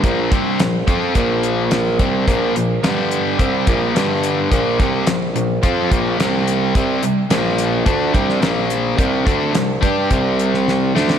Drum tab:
HH |x-x-x-x-x-x-x-x-|x-x-x-x-x-x-x-x-|x-x-x-x-x-x-x-x-|x-x-x-x-x-x-x-x-|
SD |----o-------o---|----o-------o---|----o-------o---|----o------oo---|
BD |o-o---o-o-----o-|o-------o-o-----|o-o-----o-o-----|o-------o-o-----|

HH |x-x-x-x-x-x-----|
SD |----o------oo-oo|
BD |o-o---o-o-------|